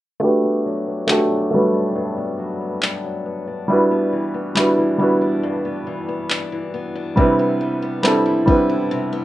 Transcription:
0.20 G2 A3 D4 F#4 G4
0.24 B4
0.43 B3
0.65 F#3
0.87 B3
1.07 A3 D4 F#4 G4, clap
1.12 A4
1.30 F#3
1.51 G3 A3 B3 D4 F#4
1.55 B4
1.74 D4
1.95 G2
2.17 B3
2.39 F#3
2.61 B3
2.82 D4, clap
3.04 F#3
3.26 B3
3.47 D4
3.68 G2 G3 D4 E4 F#4
3.72 B4
3.91 B3
4.13 E3
4.34 B3
4.55 G3 D4 E4 F#4, clap
4.59 B4
4.78 E3
4.98 G3 B3 D4 E4 F#4
5.03 B4
5.21 D4
5.43 G2
5.65 B3
5.87 E3
6.09 B3
6.30 D4, clap
6.52 E3
6.74 B3
6.96 D4
7.16 C3 G3 C4 D4 E4, kick
7.20 B4
7.39 B3
7.61 G3
7.82 B3
8.03 G3 C4 D4 E4, clap
8.07 A4
8.26 G3
8.46 G3 B3 C4 D4 E4, kick
8.50 B4
8.70 E4
8.91 C3
9.13 B3

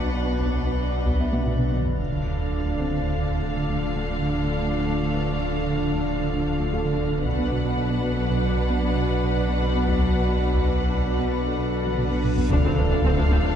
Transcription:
Already playing: B1 B2 F#3 D4 B4 D5 F#5 A5
0.01 B2
0.14 B2
0.27 B2
0.40 B2, taiko
0.53 B2
0.67 B2
0.80 B2
0.93 B2
1.06 B2, taiko
1.20 B3 E5
1.33 B2, taiko high
1.46 B3, taiko low-mid
1.59 B2, taiko low-mid
1.72 B2, taiko mid
1.85 B2, taiko low
1.97 D1 D2 D3 F3 D4 F4 A4 D5 F5, taiko
2.12 D3
2.26 D2
2.39 D2
2.52 D2
2.65 D2
2.78 D3 C4 C5, taiko
2.91 D3
3.03 D2
3.18 D2
3.31 D2
3.43 D3
3.57 D3
3.69 D2
3.83 D2
3.96 D2
4.09 D2
4.22 D3
4.35 D2
4.48 D3
4.61 D2
4.75 D3
4.88 D2
5.01 D2
5.14 D2 B4
5.27 D2
5.40 D3
5.53 D3
5.67 D2
5.80 D2
5.93 D2
6.06 D3
6.20 D3
6.34 D2
6.46 D2
6.59 D2
6.72 D2 A4
6.85 D3
6.98 D2
7.12 D3
7.23 B1 B2 F#3 D4 F#4 B4 D5 F#5, taiko
7.39 B3
7.52 B2
7.65 B2
7.78 B2
7.90 B2
8.04 B3, taiko
8.17 B3
8.31 B2
8.44 B2
8.57 B2
8.70 B3
8.83 B3
8.96 B2
9.10 B2
9.23 B2
9.36 B2
9.49 B3
9.62 B2 B3 B4
9.76 B3
9.88 B2, taiko, reverse cymbal
10.01 B3
10.16 B2
10.28 B2
10.41 B2
10.54 B2, taiko
10.68 B3
10.81 B3
10.94 B2, taiko
11.07 B2
11.19 B2
11.33 B3
11.46 B3 A4
11.59 B2
11.72 B2
11.84 B2, taiko mid
11.98 B2, taiko low-mid
12.11 B3, taiko low-mid
12.24 B2, taiko low-mid
12.38 B3, taiko low
12.50 D1 D2 D3 F3 A3 D4 F4 A4 D5 F5, taiko, impact
12.64 D2 D3 C4, taiko mid
12.78 D2 D3 D4 B4
12.90 D2 D3 D4, taiko
13.03 D2 D3 C4, taiko mid
13.16 D2 D3 D4, taiko
13.30 D2 D3 C4
13.43 D2 D3 D4

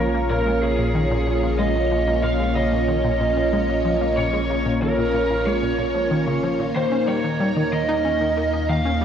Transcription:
Already playing: A#1 A#3 C#4 F4 A#4 C#5
0.14 A#3
0.30 A#2 A#4
0.47 G#3
0.62 C#3 G#4
0.79 A#2
0.95 D#3
1.11 A#2
1.27 A#2
1.43 A#2
1.59 G#3 D#5
1.76 A#2
1.92 F3
2.08 A#3
2.23 A#2 F5
2.40 G#3
2.56 C#3 D#5
2.73 A#2
2.88 D#3
3.04 A#2
3.21 A#2
3.37 A#2
3.53 G#3
3.69 A#2
3.85 F3
4.01 A#3
4.17 A#2 C#5
4.33 G#3
4.50 C#3
4.66 A#2
4.82 D#3 A#4
4.98 A#2
5.14 A#2
5.30 A#2
5.46 G#3 C#5
5.63 A#2
5.79 A#2
5.95 F3
6.11 D#3
6.27 C#3
6.43 F3
6.59 A#2
6.76 D#2 D#3 D#4 A#4 C5
6.92 C#4
7.08 G3 C#5
7.24 D#3
7.40 G3
7.56 D#3
7.72 D#3 D#5
7.89 D#4
8.05 C#4
8.21 D#3
8.37 A#3
8.53 D#4
8.69 D#3 F5
8.85 C#4
9.01 G3

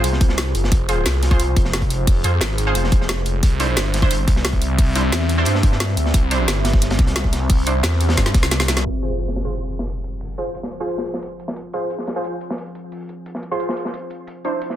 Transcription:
Already playing: F4 G#4 C5
0.04 C2, closed hi-hat
0.12 snare
0.21 kick, closed hi-hat
0.29 snare
0.37 snare, closed hi-hat
0.55 F#1, closed hi-hat
0.64 snare
0.72 F1, kick, closed hi-hat
0.89 F4 G#4 C5, closed hi-hat
1.06 C2, snare, closed hi-hat
1.15 snare
1.23 snare, closed hi-hat
1.31 F4 G#4 C5, kick, closed hi-hat
1.40 closed hi-hat
1.56 F1, kick, closed hi-hat
1.65 snare
1.73 F1, snare, closed hi-hat
1.82 kick, closed hi-hat
1.90 closed hi-hat
2.07 kick, closed hi-hat, open hi-hat
2.23 F2 F4 G#4 C5, closed hi-hat
2.41 G#1, snare, closed hi-hat
2.51 snare
2.58 closed hi-hat
2.67 F4 G#4 C5
2.75 F1, closed hi-hat
2.84 snare
2.92 kick, closed hi-hat
3.01 snare
3.09 snare, closed hi-hat
3.25 F1, closed hi-hat
3.43 C2 C4 G4 D5 E5, kick, closed hi-hat
3.60 D4 E4 C5, closed hi-hat
3.76 G1, snare, closed hi-hat
3.84 snare
3.94 snare, closed hi-hat
4.02 D4 E4 C5, kick
4.11 closed hi-hat
4.28 C2, kick, closed hi-hat
4.36 snare
4.44 C2, snare, closed hi-hat
4.53 kick, closed hi-hat
4.62 closed hi-hat
4.78 kick, closed hi-hat, open hi-hat
4.95 C2 D4 E4 C5, closed hi-hat
5.12 E2, snare, closed hi-hat
5.21 snare
5.29 closed hi-hat
5.38 D4 E4 C5
5.45 G2, closed hi-hat
5.55 snare
5.63 kick, closed hi-hat
5.72 snare
5.80 snare, closed hi-hat
5.97 D2, closed hi-hat
6.06 snare
6.14 C2 C5, kick, closed hi-hat
6.31 D4 E4 C5, closed hi-hat
6.48 G1, snare, closed hi-hat
6.57 snare
6.65 snare, closed hi-hat
6.73 kick, snare
6.82 snare, closed hi-hat
6.90 snare, closed hi-hat
6.99 C2, kick, snare, closed hi-hat
7.07 snare, closed hi-hat
7.16 C2, snare, closed hi-hat
7.24 kick, snare
7.33 snare, closed hi-hat
7.49 kick, closed hi-hat, open hi-hat
7.67 C2 D4 E4 C5, closed hi-hat
7.83 E2, snare, closed hi-hat
7.92 snare
8.01 closed hi-hat
8.09 snare, closed hi-hat
8.17 G2, kick, snare, closed hi-hat
8.25 snare
8.34 C2, kick, snare, closed hi-hat
8.43 snare, closed hi-hat
8.51 snare, closed hi-hat
8.60 snare, closed hi-hat
8.68 snare, closed hi-hat
8.76 snare, closed hi-hat
8.85 F4 C5 F5 G#5, closed hi-hat, impact
9.02 F4 G#4 C5, closed hi-hat
9.19 closed hi-hat
9.28 snare
9.36 snare, closed hi-hat
9.45 F4 G#4 C5
9.53 closed hi-hat
9.70 closed hi-hat
9.79 snare
9.87 closed hi-hat
9.96 closed hi-hat
10.04 closed hi-hat
10.21 closed hi-hat, open hi-hat
10.38 F4 G#4 C5, closed hi-hat
10.55 closed hi-hat
10.63 snare
10.72 closed hi-hat
10.80 F4 G#4 C5
10.89 closed hi-hat
10.98 snare
11.06 closed hi-hat
11.14 snare
11.23 closed hi-hat
11.40 closed hi-hat
11.48 snare
11.56 closed hi-hat
11.73 F4 G#4 C5, closed hi-hat
11.90 closed hi-hat
11.98 snare
12.07 snare, closed hi-hat
12.16 F4 G#4 C5, closed hi-hat
12.24 closed hi-hat
12.40 closed hi-hat
12.50 snare
12.58 closed hi-hat
12.66 closed hi-hat
12.75 closed hi-hat
12.92 closed hi-hat, open hi-hat
13.09 closed hi-hat
13.26 closed hi-hat
13.35 snare
13.42 closed hi-hat
13.51 F4 G#4 C5
13.60 closed hi-hat
13.69 snare
13.77 closed hi-hat
13.85 snare
13.94 closed hi-hat
14.10 closed hi-hat
14.27 C4 G4 D5 E5, closed hi-hat
14.45 D4 E4 C5, closed hi-hat
14.61 closed hi-hat
14.70 snare

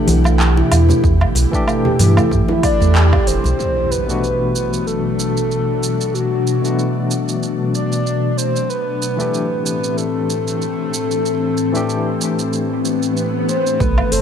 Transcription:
Already playing: B2 E3 A3 D4 G4 F#5
0.07 B1 E3, open hi-hat, high conga, shaker
0.24 A3, high conga, low woodblock, shaker
0.40 clap, shaker
0.57 E4, muted conga
0.72 E2 E3, open hi-hat, low woodblock, shaker
0.89 A3, muted conga, high conga, low conga, shaker
1.03 E2 E4, kick, shaker
1.21 high conga, low woodblock
1.35 B1, open hi-hat, muted conga, shaker
1.51 E3 A3 D4 G4, kick, shaker
1.67 A3, low woodblock, shaker
1.85 G4, low conga
1.99 G2 E3, open hi-hat, high conga, shaker
2.17 A3, low conga, low woodblock, shaker
2.31 G2, kick, shaker
2.48 E4, high conga
2.63 D5, kick, open hi-hat, low woodblock, shaker
2.80 E2 A3, high conga, shaker
2.95 clap, shaker
3.13 G4, kick, low woodblock
3.27 E1 C5, open hi-hat, shaker
3.44 B1, muted conga, high conga, shaker
3.59 B2 F#3 A3 D4, impact, shaker
3.91 B4, shaker
4.07 B2 E3 A3 D4 F#4, shaker
4.24 shaker
4.55 B4, shaker
4.73 shaker
4.87 A4, shaker
5.19 shaker
5.37 shaker
5.51 shaker
5.83 shaker
6.01 shaker
6.14 F#4, shaker
6.47 shaker
6.62 B2 E3 A3 D4 F#4, shaker
6.79 shaker
7.11 shaker
7.28 shaker
7.43 shaker
7.74 D5, shaker
7.92 shaker
8.07 shaker
8.31 D5
8.37 C5, shaker
8.56 shaker
8.69 A2 E3 A3 C4 B4, shaker
9.02 shaker
9.17 E3 A3 D4 G4, shaker
9.34 shaker
9.65 B4, shaker
9.84 shaker
9.97 A4, shaker
10.30 shaker
10.48 shaker
10.62 shaker
10.94 shaker
11.11 shaker
11.26 shaker
11.57 shaker
11.72 E3 A3 D4, shaker
11.76 G4
11.89 shaker
12.21 shaker
12.39 shaker
12.52 swell, shaker
12.85 shaker
13.03 shaker
13.17 shaker
13.48 C5, shaker
13.67 shaker
13.80 B1 A3 B4, kick, shaker
13.98 low woodblock
14.12 F#1 A4 C5, open hi-hat, shaker

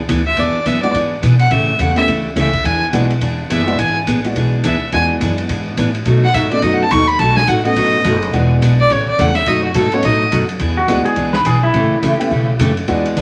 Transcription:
0.09 D2 E3 B3 D4 G#4, kick, hi-hat pedal, ride
0.27 E5
0.37 E2 E3 B3 D4 G#4 D5, kick, ride
0.54 muted upright bass stroke
0.66 F#2 E3 B3 D4 G#4 E5, kick, hi-hat pedal, ride
0.82 G#3 B3 D4 E4 F#4 D5, ride
0.94 G#2 E3 B3 D4 G#4, kick, ride
1.22 B2 E3 B3 D4 G#4, kick, hi-hat pedal, ride
1.39 F#5, ride
1.51 A2 C#3 E3 A3 C#4 G4 E5, kick, ride
1.79 E2 C#3 E3 A3 C#4 G4 F#5, kick, hi-hat pedal, ride
1.96 A3 B3 C#4 E4 G4 E5, ride
2.07 D2 C#3 E3 A3 C#4 G4, kick, ride
2.36 C#2 C#3 E3 A3 C#4 G4 E5, kick, hi-hat pedal, ride
2.53 kick, ride
2.64 E2 E3 B3 D4 G#4 G#5, kick, ride
2.93 B1 E3 G#3 B3 D4 E4 F#4 G#4, kick, hi-hat pedal, ride
3.10 ride
3.21 E1 E3 B3 D4 G#4, kick, ride
3.50 F#1 E3 B3 D4 G#4 E5, kick, hi-hat pedal, ride
3.66 G#3 B3 D4 E4 F#4, ride
3.79 G#1 E3 B3 D4 G#4 G#5, kick, ride
4.07 A1 E3 B3 D4 G#4, kick, hi-hat pedal, ride
4.24 G#3 B3 D4 E4 F#4, ride
4.35 B1 E3 B3 D4 G#4, kick, ride
4.64 D2 E3 B3 D4 G#4 E5, kick, hi-hat pedal, ride
4.92 E2 E3 G#3 B3 D4 E4 F#4 G#4 G#5, kick, ride
5.21 F#2 E3 B3 D4 G#4, kick, hi-hat pedal, ride
5.38 ride
5.49 G#2 E3 B3 D4 G#4, kick, ride
5.77 A2 E3 B3 D4 G#4, kick, hi-hat pedal, ride
5.95 ride
6.05 B2 F#3 A3 D#4 F#4, kick, ride
6.24 F#5
6.34 G#2 B2 F#3 A3 D#4 F#4 E5, kick, hi-hat pedal, ride
6.51 A3 B3 C#4 D#4 F#4 D5, ride
6.62 F#2 B2 F#3 A3 D#4 F#4 D#5, kick, ride
6.73 F#5
6.83 A5
6.91 D#2 B2 F#3 A3 D#4 F#4 C#6, kick, hi-hat pedal, ride
7.08 B5, ride
7.19 B1 B2 F#3 A3 D#4 F#4 A5, kick, ride
7.36 G#5, snare
7.47 A1 B2 F#3 A3 D#4 F#4 F#5, kick, hi-hat pedal, ride
7.64 A3 B3 C#4 D#4 F#4 D#5, ride
7.76 G#1 B2 F#3 A3 D#4 F#4, kick, ride
8.04 F#1 B2 F#3 A3 D#4 F#4, kick, hi-hat pedal, ride
8.22 ride
8.32 E1 E3 G#3 B3 D4 E4 F#4 G#4, kick, ride
8.61 B1 E3 B3 D4 G#4, kick, hi-hat pedal, ride
8.80 D5
8.90 A1 C#3 E3 A3 C#4 G4 C#5, kick, ride
9.09 D5, muted upright bass stroke
9.18 E2 C#3 E3 A3 C#4 G4 F#5, kick, hi-hat pedal, ride
9.35 E5, snare, ride
9.46 F#2 B2 F#3 A3 D#4 F#4 D#5, kick, ride
9.64 F#4
9.74 G#2 B2 F#3 A3 D#4 F#4 A4, kick, hi-hat pedal, ride
9.92 A3 B3 C#4 D#4 F#4 C#5, ride
10.03 A2 B2 F#3 A3 D#4 F#4 D#5, kick, ride
10.31 F#2 B2 F#3 A3 D#4 F#4, kick, hi-hat pedal, ride
10.49 ride
10.59 E2 E3 B3 D4 G#4, kick, ride
10.77 F#4
10.88 D2 E3 G#3 B3 D4 E4 F#4 G#4, kick, hi-hat pedal, ride
11.05 G#4, muted upright bass stroke, ride
11.16 C#2 E3 B3 D4 G#4, kick, ride
11.33 B4, snare
11.45 B1 E3 B3 D4 G#4, kick, hi-hat pedal, ride
11.63 E4
11.74 A1 C#3 E3 A3 C#4 G4, kick, ride
12.02 G1 C#3 E3 A3 C#4 G4, kick, hi-hat pedal, ride
12.18 A3 B3 C#4 E4 G4, ride
12.31 B1 C#3 E3 A3 C#4 G4, kick
12.59 F#2 C#3 E3 A3 C#4 G4, kick, hi-hat pedal, ride
12.77 ride
12.88 E2 E3 G#3 B3 D4 E4 F#4 G#4, kick, ride
13.05 ride
13.17 D2 E3 B3 D4 G#4, kick, hi-hat pedal, ride

